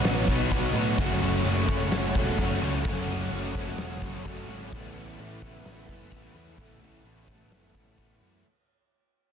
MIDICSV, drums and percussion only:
0, 0, Header, 1, 2, 480
1, 0, Start_track
1, 0, Tempo, 467290
1, 1006, Time_signature, 4, 2, 24, 8
1, 9575, End_track
2, 0, Start_track
2, 0, Title_t, "Drums"
2, 48, Note_on_c, 9, 49, 63
2, 52, Note_on_c, 9, 38, 108
2, 151, Note_off_c, 9, 49, 0
2, 155, Note_off_c, 9, 38, 0
2, 287, Note_on_c, 9, 36, 85
2, 390, Note_off_c, 9, 36, 0
2, 528, Note_on_c, 9, 36, 74
2, 531, Note_on_c, 9, 49, 64
2, 631, Note_off_c, 9, 36, 0
2, 634, Note_off_c, 9, 49, 0
2, 1010, Note_on_c, 9, 36, 120
2, 1012, Note_on_c, 9, 49, 70
2, 1113, Note_off_c, 9, 36, 0
2, 1114, Note_off_c, 9, 49, 0
2, 1491, Note_on_c, 9, 49, 60
2, 1593, Note_off_c, 9, 49, 0
2, 1732, Note_on_c, 9, 36, 91
2, 1834, Note_off_c, 9, 36, 0
2, 1969, Note_on_c, 9, 49, 56
2, 1973, Note_on_c, 9, 38, 110
2, 2072, Note_off_c, 9, 49, 0
2, 2076, Note_off_c, 9, 38, 0
2, 2212, Note_on_c, 9, 36, 90
2, 2315, Note_off_c, 9, 36, 0
2, 2450, Note_on_c, 9, 36, 81
2, 2454, Note_on_c, 9, 49, 62
2, 2553, Note_off_c, 9, 36, 0
2, 2556, Note_off_c, 9, 49, 0
2, 2926, Note_on_c, 9, 49, 67
2, 2929, Note_on_c, 9, 36, 121
2, 3029, Note_off_c, 9, 49, 0
2, 3032, Note_off_c, 9, 36, 0
2, 3401, Note_on_c, 9, 49, 65
2, 3504, Note_off_c, 9, 49, 0
2, 3647, Note_on_c, 9, 36, 83
2, 3750, Note_off_c, 9, 36, 0
2, 3883, Note_on_c, 9, 49, 67
2, 3887, Note_on_c, 9, 38, 116
2, 3985, Note_off_c, 9, 49, 0
2, 3989, Note_off_c, 9, 38, 0
2, 4128, Note_on_c, 9, 36, 86
2, 4231, Note_off_c, 9, 36, 0
2, 4371, Note_on_c, 9, 36, 75
2, 4375, Note_on_c, 9, 49, 67
2, 4473, Note_off_c, 9, 36, 0
2, 4478, Note_off_c, 9, 49, 0
2, 4852, Note_on_c, 9, 36, 124
2, 4854, Note_on_c, 9, 49, 65
2, 4955, Note_off_c, 9, 36, 0
2, 4957, Note_off_c, 9, 49, 0
2, 5333, Note_on_c, 9, 49, 66
2, 5435, Note_off_c, 9, 49, 0
2, 5569, Note_on_c, 9, 36, 90
2, 5671, Note_off_c, 9, 36, 0
2, 5807, Note_on_c, 9, 49, 59
2, 5811, Note_on_c, 9, 38, 112
2, 5910, Note_off_c, 9, 49, 0
2, 5914, Note_off_c, 9, 38, 0
2, 6047, Note_on_c, 9, 36, 81
2, 6150, Note_off_c, 9, 36, 0
2, 6280, Note_on_c, 9, 49, 62
2, 6285, Note_on_c, 9, 36, 84
2, 6383, Note_off_c, 9, 49, 0
2, 6388, Note_off_c, 9, 36, 0
2, 6529, Note_on_c, 9, 38, 36
2, 6632, Note_off_c, 9, 38, 0
2, 6756, Note_on_c, 9, 49, 68
2, 6760, Note_on_c, 9, 36, 120
2, 6858, Note_off_c, 9, 49, 0
2, 6863, Note_off_c, 9, 36, 0
2, 7244, Note_on_c, 9, 49, 65
2, 7347, Note_off_c, 9, 49, 0
2, 7478, Note_on_c, 9, 36, 81
2, 7581, Note_off_c, 9, 36, 0
2, 7721, Note_on_c, 9, 49, 67
2, 7725, Note_on_c, 9, 38, 109
2, 7823, Note_off_c, 9, 49, 0
2, 7827, Note_off_c, 9, 38, 0
2, 7960, Note_on_c, 9, 36, 82
2, 8062, Note_off_c, 9, 36, 0
2, 8200, Note_on_c, 9, 36, 80
2, 8209, Note_on_c, 9, 49, 66
2, 8302, Note_off_c, 9, 36, 0
2, 8312, Note_off_c, 9, 49, 0
2, 9575, End_track
0, 0, End_of_file